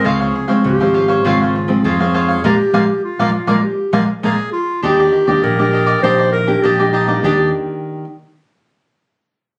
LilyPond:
<<
  \new Staff \with { instrumentName = "Cavaquinho" } { \time 4/4 \key ees \major \tempo 4 = 100 <f' c'' des'' f''>16 <c'' des'' f''>16 r16 <c'' des'' f''>8 <c'' des'' f''>16 <f' c'' des'' f''>16 <c'' des'' f''>16 <f' c'' des'' f''>16 <c'' des'' f''>16 r8 <f' c'' des'' f''>16 <c'' des'' f''>16 <f' c'' des'' f''>16 <c'' des'' f''>16 | <bes' d'' f''>16 r16 <bes' d'' f''>16 r8 <bes' d'' f''>16 r16 <bes' d'' f''>16 r8 <bes' d'' f''>16 r16 <bes' d'' f''>16 r8. | <d' g' d'' ees''>16 <g' d'' ees''>16 r16 <g' d'' ees''>8 <g' d'' ees''>16 <d' g' d'' ees''>16 <g' d'' ees''>16 <d' g' d'' ees''>16 <g' d'' ees''>16 r8 <d' g' d'' ees''>16 <g' d'' ees''>16 <d' g' d'' ees''>16 <g' d'' ees''>16 | <d' g' d'' ees''>8 r2. r8 | }
  \new Staff \with { instrumentName = "Clarinet" } { \time 4/4 \key ees \major aes'4 g'4 f'4 aes'4 | g'4 f'4 g'8 r8 aes'8 f'8 | g'4 bes'4 c''8 bes'8 g'8 ees'8 | g'8 r2. r8 | }
  \new Staff \with { instrumentName = "Nylon-string guitar" } { \time 4/4 \key ees \major << { <f aes c'>8. <f aes c'>8 <f aes c'>8. <f aes c'>8 r16 <f aes c'>8 <f aes c'>8. | <f aes bes>16 r16 <f aes bes>16 r8 <f aes bes>16 r16 <f aes bes>16 r8 <f aes bes>16 r16 <f aes bes>16 r8. | <bes d' g'>8. <bes d' g'>8 <bes d' g'>8. <bes d' g'>8 r16 <bes d' g'>8 <bes d' g'>8 <bes d' g'>16~ | <bes d' g'>8. r2. r16 | } \\ { des4 aes,4 des4 aes,4 | r1 | ees4 bes,4 ees4 bes,4 | <ees bes d' g'>8 r2. r8 | } >> }
  \new Staff \with { instrumentName = "Fingered electric bass" } { \clef bass \time 4/4 \key ees \major des,8 r8 des,16 aes,,8. aes,,4 f,4 | bes,,16 r16 bes,,16 r8 bes,,16 r16 bes,,16 r8 bes,,16 r16 bes,,16 r8. | ees,8 r16 ees,16 bes,,4 bes,,4 bes,,4 | ees,8 r2. r8 | }
>>